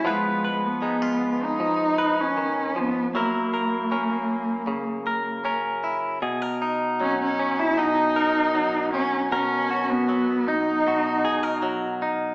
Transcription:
<<
  \new Staff \with { instrumentName = "Clean electric guitar" } { \time 4/4 \key dis \phrygian \tempo 4 = 78 << { <b eis' b'>8 b'8 dis'16 eis'4~ eis'16 b'4. | <e' ais'>8 ais'8 ais'4. ais'8 ais'8 e'8 | gis'16 ais'16 dis'4 cis'8 dis'8 ais'4 cis'8 | ais'8 fis'4 dis'8 fis'8 gis'16 ais'8. dis'8 | } \\ { eis4 gis4 eis4 dis8 eis8 | fis4 cis'4 cis4 cis'4 | b,4 fis4 b,4 fis4 | b,4 fis4 b,4 fis4 | } >> }
  \new Staff \with { instrumentName = "Cello" } { \time 4/4 \key dis \phrygian gis8. b4 dis'4 cis'8. b8 | ais2. r4 | r4 cis'16 cis'8 e'16 dis'4. cis'8 | cis'8. b8. dis'4. r4 | }
>>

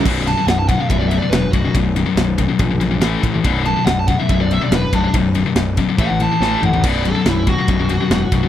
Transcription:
<<
  \new Staff \with { instrumentName = "Lead electric guitar" } { \time 4/4 \key b \minor \tempo 4 = 142 r8 a''8 fis''16 a''16 fis''16 eis''16 e''16 d''16 e''16 d''16 b'8 fis'8 | r1 | r8 a''8 fis''16 a''16 fis''16 e''16 e''16 d''16 e''16 d''16 b'8 d'8 | r2 fis''8 a''4 fis''8 |
d''8 a'8 e'8 fis'2~ fis'8 | }
  \new Staff \with { instrumentName = "Distorted electric guitar" } { \clef bass \time 4/4 \key b \minor <b,, fis, b,>8 <b,, fis,>16 <b,, fis,>16 <b,, fis,>8 <b,, fis,>16 <b,, fis,>16 <b,, fis,>16 <b,, fis,>16 <b,, fis,>16 <b,, fis,>16 <b,, fis,>8 <b,, fis,>16 <b,, fis,>16 | <b,, fis,>8 <b,, fis,>16 <b,, fis,>16 <b,, fis,>8 <b,, fis,>16 <b,, fis,>16 <b,, fis,>16 <b,, fis,>16 <b,, fis,>16 <b,, fis,>16 <a, e a>8 <a, e>16 <a, e>16 | <b,, fis, b,>8 <b,, fis,>16 <b,, fis,>16 <b,, fis,>8 <b,, fis,>16 <b,, fis,>16 <b,, fis,>16 <b,, fis,>16 <b,, fis,>16 <b,, fis,>16 <b,, fis,>8 <b,, fis,>16 <b,, fis,>16 | <b,, fis,>8 <b,, fis,>16 <b,, fis,>16 <b,, fis,>8 <b,, fis,>16 <b,, fis,>16 <a, e a>16 <a, e>16 <a, e>16 <a, e>16 <a, e a>8 <a, e>16 <a, e>16 |
<b,, fis, b,>8 <b,, fis,>16 <b,, fis,>16 <b,, fis,>8 <b,, fis,>16 <b,, fis,>16 <b,, fis,>16 <b,, fis,>16 <b,, fis,>16 <b,, fis,>16 <b,, fis,>8 <b,, fis,>16 <b,, fis,>16 | }
  \new Staff \with { instrumentName = "Picked electric bass" } { \clef bass \time 4/4 \key b \minor b,,,4 b,,,4 b,,,4 e,,8 b,,,8 | b,,,4 b,,,4 ais,,4 a,,8 a,,8 | b,,,4 b,,,4 b,,,4 e,,8 b,,,8 | b,,,4 b,,,4 a,,4 a,,8 a,,8 |
b,,,4 b,,,4 b,,,4 e,,8 b,,,8 | }
  \new DrumStaff \with { instrumentName = "Drums" } \drummode { \time 4/4 <cymc bd>8 cymr8 <cymr sn>8 <bd cymr>8 <bd cymr>8 cymr8 <cymr sn>8 <bd cymr>8 | <bd cymr>8 cymr8 <cymr sn>8 <bd cymr>8 <bd cymr>8 cymr8 <cymr sn>8 <bd cymr>8 | <bd cymr>8 cymr8 <cymr sn>8 <bd cymr>8 <bd cymr>8 cymr8 <cymr sn>8 <bd cymr>8 | <bd cymr>8 cymr8 <cymr sn>8 <bd cymr>8 <bd cymr>8 cymr8 sn8 toml16 tomfh16 |
<cymc bd>8 cymr8 <cymr sn>8 <bd cymr>8 <bd cymr>8 cymr8 <cymr sn>8 <bd cymr>8 | }
>>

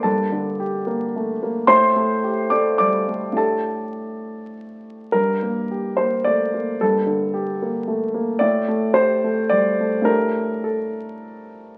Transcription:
<<
  \new Staff \with { instrumentName = "Grand piano" } { \time 3/4 \key g \minor \tempo 4 = 108 <a' a''>2~ <a' a''>8 r8 | <c'' c'''>4. <d'' d'''>8 <d'' d'''>4 | <a' a''>2 r4 | bes'4. c''8 d''4 |
a'2~ a'8 r8 | d''4 c''4 d''4 | bes'4 a'4 r4 | }
  \new Staff \with { instrumentName = "Grand piano" } { \time 3/4 \key g \minor <g, bes>8 d8 g'8 bes8 a8 bes8 | a,8 a8 g'8 a8 g8 a8 | <a, a d' g'>2. | g,8 bes8 g'8 bes8 a8 bes8 |
g,8 d8 g'8 bes8 a8 bes8 | a,8 a8 g'8 a8 g8 a8 | <a, a d' g'>2. | }
>>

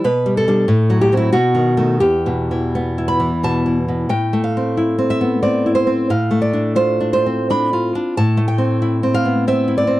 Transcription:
\new Staff \with { instrumentName = "Nylon-string guitar" } { \time 3/4 \key e \minor \tempo 4 = 90 << { b'8 a'4 g'16 e'16 fis'4 | g'4. b''8 a''4 | \key a \minor g''8 f''4 e''8 d''8 c''8 | f''8 d''8 c''8 c''8 b''4 |
a''8 g''4 f''8 e''8 d''8 | } \\ { \tuplet 3/2 { b,8 g8 <g d'>8 a,8 fis8 <fis c'>8 b,8 dis8 <dis a>8 } | \tuplet 3/2 { e,8 b,8 e8 b8 e'8 e8 b,8 e8 b,8 } | \tuplet 3/2 { a,8 a8 c'8 e'8 c'8 b8 c'8 e'8 c'8 } | \tuplet 3/2 { a,8 a8 d'8 f'8 d'8 c'8 d'8 f'8 d'8 } |
\tuplet 3/2 { a,8 a8 c'8 e'8 c'8 b8 c'8 e'8 c'8 } | } >> }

